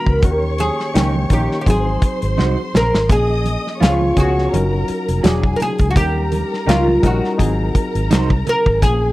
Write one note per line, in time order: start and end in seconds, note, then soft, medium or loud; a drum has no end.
0.00 0.17 E3 medium
0.00 0.18 G#3 medium
0.00 0.21 B3 medium
0.00 0.18 D4 medium
0.00 0.18 F#4 loud
0.00 0.60 A#4 loud
0.00 0.21 B5 medium
0.06 0.20 C#2 medium
0.06 kick medium
0.22 0.69 D#2 loud
0.22 0.89 D#3 medium
0.22 0.90 A#3 medium
0.22 0.90 C#4 medium
0.22 0.31 F#4 medium
0.22 1.64 C#5 medium
0.22 1.63 C#6 medium
0.22 kick loud
0.22 closed hi-hat medium
0.22 muted conga soft
0.22 low conga medium
0.31 0.93 G4 medium
0.43 muted conga soft
0.58 1.33 G#4 loud
0.58 closed hi-hat medium
0.58 high conga medium
0.80 snare soft
0.94 1.25 C#2 medium
0.94 1.28 D#3 medium
0.94 1.28 A#3 medium
0.94 1.28 C#4 medium
0.94 1.13 D#4 medium
0.94 1.14 G4 medium
0.94 1.14 C#5 medium
0.94 1.28 G5 medium
0.94 snare loud
0.94 closed hi-hat loud
0.94 muted conga soft
0.94 high conga medium
1.16 muted conga soft
1.16 high conga medium
1.30 1.46 A#1 medium
1.30 1.66 D#3 medium
1.30 1.67 A#3 medium
1.30 1.67 C#4 medium
1.30 1.60 G4 medium
1.30 1.67 A#4 medium
1.30 kick medium
1.30 closed hi-hat medium
1.30 low conga medium
1.52 snare soft
1.61 1.67 G4 medium
1.66 1.96 G#1 loud
1.66 2.99 F#3 medium
1.66 2.99 C4 medium
1.66 2.99 D#4 medium
1.66 2.99 G#4 medium
1.66 2.36 G#4 medium
1.66 3.07 C5 medium
1.66 3.07 C6 medium
1.66 kick medium
1.66 closed hi-hat medium
1.66 muted conga soft
1.66 high conga medium
1.87 muted conga soft
2.02 kick medium
2.02 closed hi-hat medium
2.22 2.36 G#1 medium
2.22 closed hi-hat medium
2.38 2.55 C2 medium
2.38 2.56 D#4 medium
2.38 2.57 F#4 medium
2.38 2.57 C5 medium
2.38 snare medium
2.38 high conga medium
2.58 muted conga soft
2.74 2.90 A#1 medium
2.74 3.09 A#4 loud
2.74 snare loud
2.74 low conga medium
2.94 3.07 G#1 medium
2.94 snare medium
3.09 3.55 A#1 loud
3.09 3.76 F3 medium
3.09 3.76 A#3 medium
3.09 3.76 C#4 medium
3.09 3.77 G#4 medium
3.09 3.82 G#4 medium
3.09 3.80 D#5 medium
3.09 3.80 D#6 medium
3.09 kick loud
3.09 closed hi-hat medium
3.09 muted conga soft
3.09 low conga medium
3.29 muted conga soft
3.45 closed hi-hat medium
3.45 high conga medium
3.67 snare soft
3.80 4.11 C#2 medium
3.80 4.14 F3 medium
3.80 4.15 B3 medium
3.80 4.15 C#4 medium
3.80 3.99 F4 medium
3.80 4.19 F4 medium
3.80 4.15 G#4 medium
3.80 4.00 B4 medium
3.80 4.51 C#5 medium
3.80 4.00 C#5 medium
3.80 4.51 C#6 medium
3.80 snare loud
3.80 closed hi-hat medium
3.80 muted conga soft
3.80 high conga medium
4.01 muted conga soft
4.01 high conga medium
4.17 4.47 C#2 medium
4.17 4.53 G#3 medium
4.17 4.53 B3 medium
4.17 4.52 C#4 medium
4.17 5.22 F#4 medium
4.17 4.53 G#4 medium
4.17 kick medium
4.17 closed hi-hat medium
4.17 low conga medium
4.38 snare soft
4.51 4.83 F#1 loud
4.51 5.19 F#3 medium
4.51 5.19 C#4 medium
4.51 5.19 D#4 medium
4.51 5.22 A#4 medium
4.51 5.20 A#4 medium
4.51 5.22 A#5 medium
4.51 closed hi-hat medium
4.51 muted conga soft
4.51 high conga medium
4.73 muted conga soft
4.88 muted fingered electric bass stroke soft
4.88 closed hi-hat medium
5.09 5.22 F1 medium
5.09 closed hi-hat medium
5.23 5.54 E1 medium
5.23 5.90 F#3 medium
5.23 5.91 D4 medium
5.23 5.91 E4 medium
5.23 5.42 F#4 medium
5.23 5.94 G#4 medium
5.23 5.43 G#4 medium
5.23 5.91 G#4 loud
5.23 5.43 D5 medium
5.23 5.94 G#5 medium
5.23 snare loud
5.23 closed hi-hat medium
5.23 muted conga soft
5.23 high conga medium
5.43 kick medium
5.43 muted conga soft
5.56 5.62 A#4 medium
5.56 closed hi-hat medium
5.62 5.90 G#4 medium
5.62 low conga medium
5.79 5.93 C#2 medium
5.79 kick medium
5.79 closed hi-hat medium
5.91 5.96 F#4 medium
5.95 6.42 D#2 loud
5.95 6.62 G3 medium
5.95 6.63 C#4 medium
5.95 6.63 D#4 medium
5.95 6.69 G4 loud
5.95 7.36 A#4 medium
5.95 6.63 A#4 medium
5.95 7.36 A#5 medium
5.95 kick loud
5.95 closed hi-hat medium
5.95 low conga medium
6.16 muted conga soft
6.32 closed hi-hat medium
6.32 high conga medium
6.54 snare soft
6.66 6.97 C#2 loud
6.66 7.01 G3 medium
6.66 7.01 C#4 medium
6.66 6.86 D#4 medium
6.66 7.01 D#4 medium
6.66 7.05 F4 medium
6.66 6.86 G4 medium
6.66 7.01 A#4 medium
6.66 6.86 C#5 medium
6.66 snare loud
6.66 closed hi-hat medium
6.66 muted conga soft
6.66 high conga medium
6.88 high conga medium
7.03 7.20 A#1 medium
7.03 7.39 G3 medium
7.03 7.39 C#4 medium
7.03 7.37 D#4 medium
7.03 8.08 F#4 medium
7.03 7.40 A#4 medium
7.03 kick medium
7.03 closed hi-hat medium
7.03 low conga medium
7.24 snare soft
7.38 7.69 G#1 loud
7.38 8.71 F#3 medium
7.38 8.71 C4 medium
7.38 8.71 D#4 medium
7.38 8.71 G#4 medium
7.38 8.80 A#4 medium
7.38 8.80 A#5 medium
7.38 kick medium
7.38 closed hi-hat medium
7.38 high conga medium
7.59 muted conga soft
7.75 kick medium
7.75 closed hi-hat medium
7.95 8.09 G#1 medium
7.95 closed hi-hat medium
8.10 8.41 C2 medium
8.10 8.29 D#4 medium
8.10 8.30 F#4 medium
8.10 8.30 C5 medium
8.10 snare loud
8.10 closed hi-hat loud
8.10 high conga medium
8.30 kick loud
8.30 muted conga soft
8.47 8.82 A#4 loud
8.47 closed hi-hat medium
8.47 low conga medium
8.66 8.80 G#1 medium
8.66 kick medium
8.82 9.12 A#1 loud
8.82 9.12 F3 medium
8.82 9.12 A#3 medium
8.82 9.12 C#4 medium
8.82 9.12 G#4 medium
8.82 9.12 G#4 loud
8.82 9.12 G#4 medium
8.82 9.12 G#5 medium
8.82 kick loud
8.82 closed hi-hat medium
8.82 muted conga soft
8.82 low conga medium
9.02 muted conga soft